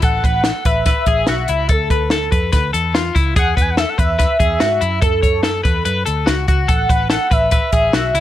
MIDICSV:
0, 0, Header, 1, 5, 480
1, 0, Start_track
1, 0, Key_signature, 3, "major"
1, 0, Tempo, 415800
1, 40, Time_signature, 4, 2, 24, 8
1, 9467, End_track
2, 0, Start_track
2, 0, Title_t, "Soft synth lead"
2, 0, Program_c, 0, 80
2, 45, Note_on_c, 0, 78, 101
2, 757, Note_on_c, 0, 76, 102
2, 774, Note_off_c, 0, 78, 0
2, 998, Note_off_c, 0, 76, 0
2, 1003, Note_on_c, 0, 76, 112
2, 1968, Note_on_c, 0, 69, 85
2, 1986, Note_off_c, 0, 76, 0
2, 3405, Note_off_c, 0, 69, 0
2, 3904, Note_on_c, 0, 78, 97
2, 4171, Note_on_c, 0, 80, 85
2, 4188, Note_off_c, 0, 78, 0
2, 4269, Note_on_c, 0, 78, 86
2, 4287, Note_off_c, 0, 80, 0
2, 4376, Note_on_c, 0, 76, 92
2, 4394, Note_off_c, 0, 78, 0
2, 4492, Note_on_c, 0, 78, 91
2, 4509, Note_off_c, 0, 76, 0
2, 4604, Note_on_c, 0, 76, 101
2, 4621, Note_off_c, 0, 78, 0
2, 4824, Note_off_c, 0, 76, 0
2, 4831, Note_on_c, 0, 76, 106
2, 5794, Note_on_c, 0, 69, 86
2, 5811, Note_off_c, 0, 76, 0
2, 7238, Note_off_c, 0, 69, 0
2, 7724, Note_on_c, 0, 78, 104
2, 8170, Note_off_c, 0, 78, 0
2, 8217, Note_on_c, 0, 78, 102
2, 8454, Note_on_c, 0, 76, 103
2, 8472, Note_off_c, 0, 78, 0
2, 8676, Note_off_c, 0, 76, 0
2, 8683, Note_on_c, 0, 76, 104
2, 9467, Note_off_c, 0, 76, 0
2, 9467, End_track
3, 0, Start_track
3, 0, Title_t, "Clean electric guitar"
3, 0, Program_c, 1, 27
3, 35, Note_on_c, 1, 69, 81
3, 280, Note_off_c, 1, 69, 0
3, 280, Note_on_c, 1, 71, 58
3, 516, Note_off_c, 1, 71, 0
3, 516, Note_on_c, 1, 69, 69
3, 758, Note_off_c, 1, 69, 0
3, 763, Note_on_c, 1, 71, 66
3, 983, Note_off_c, 1, 71, 0
3, 997, Note_on_c, 1, 71, 67
3, 1238, Note_off_c, 1, 71, 0
3, 1242, Note_on_c, 1, 68, 70
3, 1481, Note_off_c, 1, 68, 0
3, 1485, Note_on_c, 1, 66, 71
3, 1721, Note_on_c, 1, 64, 71
3, 1723, Note_off_c, 1, 66, 0
3, 1951, Note_off_c, 1, 64, 0
3, 1956, Note_on_c, 1, 69, 85
3, 2198, Note_off_c, 1, 69, 0
3, 2204, Note_on_c, 1, 71, 61
3, 2437, Note_off_c, 1, 71, 0
3, 2441, Note_on_c, 1, 69, 77
3, 2673, Note_off_c, 1, 69, 0
3, 2677, Note_on_c, 1, 71, 74
3, 2901, Note_off_c, 1, 71, 0
3, 2915, Note_on_c, 1, 71, 69
3, 3150, Note_off_c, 1, 71, 0
3, 3154, Note_on_c, 1, 69, 70
3, 3398, Note_off_c, 1, 69, 0
3, 3399, Note_on_c, 1, 65, 66
3, 3634, Note_on_c, 1, 64, 71
3, 3640, Note_off_c, 1, 65, 0
3, 3878, Note_off_c, 1, 64, 0
3, 3883, Note_on_c, 1, 68, 89
3, 4115, Note_off_c, 1, 68, 0
3, 4120, Note_on_c, 1, 71, 61
3, 4357, Note_off_c, 1, 71, 0
3, 4362, Note_on_c, 1, 69, 77
3, 4594, Note_off_c, 1, 69, 0
3, 4594, Note_on_c, 1, 71, 67
3, 4820, Note_off_c, 1, 71, 0
3, 4834, Note_on_c, 1, 71, 69
3, 5070, Note_off_c, 1, 71, 0
3, 5075, Note_on_c, 1, 68, 70
3, 5313, Note_on_c, 1, 66, 69
3, 5318, Note_off_c, 1, 68, 0
3, 5552, Note_on_c, 1, 64, 68
3, 5558, Note_off_c, 1, 66, 0
3, 5786, Note_off_c, 1, 64, 0
3, 5791, Note_on_c, 1, 69, 83
3, 6028, Note_off_c, 1, 69, 0
3, 6033, Note_on_c, 1, 73, 58
3, 6269, Note_off_c, 1, 73, 0
3, 6274, Note_on_c, 1, 69, 74
3, 6501, Note_off_c, 1, 69, 0
3, 6506, Note_on_c, 1, 71, 68
3, 6741, Note_off_c, 1, 71, 0
3, 6755, Note_on_c, 1, 71, 65
3, 6986, Note_off_c, 1, 71, 0
3, 6991, Note_on_c, 1, 69, 65
3, 7228, Note_on_c, 1, 66, 68
3, 7237, Note_off_c, 1, 69, 0
3, 7470, Note_off_c, 1, 66, 0
3, 7484, Note_on_c, 1, 66, 72
3, 7716, Note_on_c, 1, 69, 85
3, 7723, Note_off_c, 1, 66, 0
3, 7958, Note_off_c, 1, 69, 0
3, 7958, Note_on_c, 1, 71, 57
3, 8192, Note_off_c, 1, 71, 0
3, 8197, Note_on_c, 1, 69, 76
3, 8432, Note_off_c, 1, 69, 0
3, 8437, Note_on_c, 1, 71, 69
3, 8667, Note_off_c, 1, 71, 0
3, 8681, Note_on_c, 1, 71, 75
3, 8919, Note_off_c, 1, 71, 0
3, 8924, Note_on_c, 1, 68, 69
3, 9163, Note_off_c, 1, 68, 0
3, 9165, Note_on_c, 1, 66, 68
3, 9403, Note_off_c, 1, 66, 0
3, 9406, Note_on_c, 1, 64, 72
3, 9467, Note_off_c, 1, 64, 0
3, 9467, End_track
4, 0, Start_track
4, 0, Title_t, "Picked electric bass"
4, 0, Program_c, 2, 34
4, 32, Note_on_c, 2, 33, 82
4, 239, Note_off_c, 2, 33, 0
4, 273, Note_on_c, 2, 33, 88
4, 582, Note_off_c, 2, 33, 0
4, 754, Note_on_c, 2, 33, 82
4, 1063, Note_off_c, 2, 33, 0
4, 1232, Note_on_c, 2, 33, 86
4, 1440, Note_off_c, 2, 33, 0
4, 1485, Note_on_c, 2, 35, 78
4, 1687, Note_off_c, 2, 35, 0
4, 1722, Note_on_c, 2, 37, 89
4, 1925, Note_off_c, 2, 37, 0
4, 1958, Note_on_c, 2, 38, 89
4, 2643, Note_off_c, 2, 38, 0
4, 2682, Note_on_c, 2, 41, 82
4, 2886, Note_off_c, 2, 41, 0
4, 2924, Note_on_c, 2, 38, 86
4, 3127, Note_off_c, 2, 38, 0
4, 3164, Note_on_c, 2, 40, 86
4, 3571, Note_off_c, 2, 40, 0
4, 3644, Note_on_c, 2, 37, 89
4, 3847, Note_off_c, 2, 37, 0
4, 3882, Note_on_c, 2, 40, 85
4, 4086, Note_off_c, 2, 40, 0
4, 4119, Note_on_c, 2, 40, 97
4, 4426, Note_off_c, 2, 40, 0
4, 4604, Note_on_c, 2, 40, 84
4, 4909, Note_off_c, 2, 40, 0
4, 5080, Note_on_c, 2, 40, 92
4, 5285, Note_off_c, 2, 40, 0
4, 5326, Note_on_c, 2, 44, 75
4, 5528, Note_off_c, 2, 44, 0
4, 5564, Note_on_c, 2, 42, 102
4, 5768, Note_off_c, 2, 42, 0
4, 5800, Note_on_c, 2, 42, 79
4, 6485, Note_off_c, 2, 42, 0
4, 6519, Note_on_c, 2, 40, 83
4, 6725, Note_off_c, 2, 40, 0
4, 6759, Note_on_c, 2, 42, 80
4, 6965, Note_off_c, 2, 42, 0
4, 7010, Note_on_c, 2, 38, 70
4, 7211, Note_off_c, 2, 38, 0
4, 7248, Note_on_c, 2, 37, 72
4, 7450, Note_off_c, 2, 37, 0
4, 7485, Note_on_c, 2, 37, 82
4, 7688, Note_off_c, 2, 37, 0
4, 7720, Note_on_c, 2, 33, 87
4, 7925, Note_off_c, 2, 33, 0
4, 7960, Note_on_c, 2, 33, 85
4, 8267, Note_off_c, 2, 33, 0
4, 8444, Note_on_c, 2, 33, 90
4, 8749, Note_off_c, 2, 33, 0
4, 8921, Note_on_c, 2, 33, 85
4, 9125, Note_off_c, 2, 33, 0
4, 9160, Note_on_c, 2, 35, 85
4, 9365, Note_off_c, 2, 35, 0
4, 9401, Note_on_c, 2, 37, 86
4, 9467, Note_off_c, 2, 37, 0
4, 9467, End_track
5, 0, Start_track
5, 0, Title_t, "Drums"
5, 25, Note_on_c, 9, 42, 84
5, 33, Note_on_c, 9, 36, 94
5, 140, Note_off_c, 9, 42, 0
5, 149, Note_off_c, 9, 36, 0
5, 276, Note_on_c, 9, 36, 71
5, 281, Note_on_c, 9, 42, 56
5, 391, Note_off_c, 9, 36, 0
5, 397, Note_off_c, 9, 42, 0
5, 504, Note_on_c, 9, 38, 96
5, 512, Note_on_c, 9, 42, 78
5, 620, Note_off_c, 9, 38, 0
5, 628, Note_off_c, 9, 42, 0
5, 753, Note_on_c, 9, 42, 67
5, 756, Note_on_c, 9, 36, 85
5, 868, Note_off_c, 9, 42, 0
5, 871, Note_off_c, 9, 36, 0
5, 988, Note_on_c, 9, 42, 89
5, 989, Note_on_c, 9, 38, 30
5, 997, Note_on_c, 9, 36, 77
5, 1104, Note_off_c, 9, 38, 0
5, 1104, Note_off_c, 9, 42, 0
5, 1113, Note_off_c, 9, 36, 0
5, 1227, Note_on_c, 9, 42, 62
5, 1233, Note_on_c, 9, 36, 72
5, 1342, Note_off_c, 9, 42, 0
5, 1348, Note_off_c, 9, 36, 0
5, 1462, Note_on_c, 9, 38, 96
5, 1468, Note_on_c, 9, 42, 75
5, 1578, Note_off_c, 9, 38, 0
5, 1583, Note_off_c, 9, 42, 0
5, 1708, Note_on_c, 9, 42, 64
5, 1823, Note_off_c, 9, 42, 0
5, 1949, Note_on_c, 9, 42, 90
5, 1955, Note_on_c, 9, 36, 95
5, 2064, Note_off_c, 9, 42, 0
5, 2071, Note_off_c, 9, 36, 0
5, 2197, Note_on_c, 9, 36, 80
5, 2200, Note_on_c, 9, 42, 63
5, 2312, Note_off_c, 9, 36, 0
5, 2315, Note_off_c, 9, 42, 0
5, 2426, Note_on_c, 9, 38, 100
5, 2434, Note_on_c, 9, 42, 77
5, 2542, Note_off_c, 9, 38, 0
5, 2550, Note_off_c, 9, 42, 0
5, 2681, Note_on_c, 9, 36, 84
5, 2682, Note_on_c, 9, 42, 64
5, 2797, Note_off_c, 9, 36, 0
5, 2797, Note_off_c, 9, 42, 0
5, 2916, Note_on_c, 9, 38, 28
5, 2916, Note_on_c, 9, 42, 81
5, 2923, Note_on_c, 9, 36, 77
5, 3031, Note_off_c, 9, 42, 0
5, 3032, Note_off_c, 9, 38, 0
5, 3039, Note_off_c, 9, 36, 0
5, 3163, Note_on_c, 9, 42, 67
5, 3279, Note_off_c, 9, 42, 0
5, 3403, Note_on_c, 9, 38, 106
5, 3408, Note_on_c, 9, 42, 78
5, 3518, Note_off_c, 9, 38, 0
5, 3523, Note_off_c, 9, 42, 0
5, 3645, Note_on_c, 9, 36, 83
5, 3645, Note_on_c, 9, 42, 65
5, 3760, Note_off_c, 9, 36, 0
5, 3760, Note_off_c, 9, 42, 0
5, 3882, Note_on_c, 9, 36, 100
5, 3882, Note_on_c, 9, 42, 80
5, 3997, Note_off_c, 9, 36, 0
5, 3997, Note_off_c, 9, 42, 0
5, 4122, Note_on_c, 9, 36, 71
5, 4131, Note_on_c, 9, 42, 67
5, 4238, Note_off_c, 9, 36, 0
5, 4246, Note_off_c, 9, 42, 0
5, 4356, Note_on_c, 9, 38, 98
5, 4364, Note_on_c, 9, 42, 77
5, 4471, Note_off_c, 9, 38, 0
5, 4479, Note_off_c, 9, 42, 0
5, 4603, Note_on_c, 9, 36, 81
5, 4604, Note_on_c, 9, 42, 64
5, 4718, Note_off_c, 9, 36, 0
5, 4720, Note_off_c, 9, 42, 0
5, 4842, Note_on_c, 9, 38, 27
5, 4842, Note_on_c, 9, 42, 79
5, 4845, Note_on_c, 9, 36, 77
5, 4958, Note_off_c, 9, 38, 0
5, 4958, Note_off_c, 9, 42, 0
5, 4961, Note_off_c, 9, 36, 0
5, 5080, Note_on_c, 9, 36, 74
5, 5080, Note_on_c, 9, 42, 63
5, 5195, Note_off_c, 9, 36, 0
5, 5196, Note_off_c, 9, 42, 0
5, 5313, Note_on_c, 9, 38, 99
5, 5319, Note_on_c, 9, 42, 75
5, 5429, Note_off_c, 9, 38, 0
5, 5434, Note_off_c, 9, 42, 0
5, 5558, Note_on_c, 9, 42, 64
5, 5673, Note_off_c, 9, 42, 0
5, 5797, Note_on_c, 9, 42, 89
5, 5799, Note_on_c, 9, 36, 99
5, 5913, Note_off_c, 9, 42, 0
5, 5915, Note_off_c, 9, 36, 0
5, 6039, Note_on_c, 9, 36, 72
5, 6041, Note_on_c, 9, 42, 61
5, 6154, Note_off_c, 9, 36, 0
5, 6157, Note_off_c, 9, 42, 0
5, 6271, Note_on_c, 9, 38, 101
5, 6279, Note_on_c, 9, 42, 77
5, 6386, Note_off_c, 9, 38, 0
5, 6394, Note_off_c, 9, 42, 0
5, 6522, Note_on_c, 9, 36, 92
5, 6522, Note_on_c, 9, 42, 64
5, 6637, Note_off_c, 9, 36, 0
5, 6637, Note_off_c, 9, 42, 0
5, 6758, Note_on_c, 9, 42, 82
5, 6874, Note_off_c, 9, 42, 0
5, 6999, Note_on_c, 9, 42, 62
5, 7115, Note_off_c, 9, 42, 0
5, 7239, Note_on_c, 9, 38, 100
5, 7244, Note_on_c, 9, 42, 73
5, 7354, Note_off_c, 9, 38, 0
5, 7359, Note_off_c, 9, 42, 0
5, 7484, Note_on_c, 9, 42, 61
5, 7486, Note_on_c, 9, 36, 84
5, 7599, Note_off_c, 9, 42, 0
5, 7601, Note_off_c, 9, 36, 0
5, 7720, Note_on_c, 9, 42, 92
5, 7723, Note_on_c, 9, 36, 102
5, 7835, Note_off_c, 9, 42, 0
5, 7838, Note_off_c, 9, 36, 0
5, 7962, Note_on_c, 9, 36, 83
5, 7964, Note_on_c, 9, 42, 62
5, 8077, Note_off_c, 9, 36, 0
5, 8080, Note_off_c, 9, 42, 0
5, 8192, Note_on_c, 9, 38, 99
5, 8200, Note_on_c, 9, 42, 81
5, 8308, Note_off_c, 9, 38, 0
5, 8316, Note_off_c, 9, 42, 0
5, 8443, Note_on_c, 9, 42, 63
5, 8444, Note_on_c, 9, 36, 90
5, 8559, Note_off_c, 9, 42, 0
5, 8560, Note_off_c, 9, 36, 0
5, 8673, Note_on_c, 9, 42, 81
5, 8686, Note_on_c, 9, 36, 80
5, 8788, Note_off_c, 9, 42, 0
5, 8801, Note_off_c, 9, 36, 0
5, 8917, Note_on_c, 9, 42, 65
5, 8922, Note_on_c, 9, 36, 75
5, 9033, Note_off_c, 9, 42, 0
5, 9037, Note_off_c, 9, 36, 0
5, 9159, Note_on_c, 9, 38, 105
5, 9164, Note_on_c, 9, 42, 73
5, 9274, Note_off_c, 9, 38, 0
5, 9280, Note_off_c, 9, 42, 0
5, 9406, Note_on_c, 9, 42, 65
5, 9467, Note_off_c, 9, 42, 0
5, 9467, End_track
0, 0, End_of_file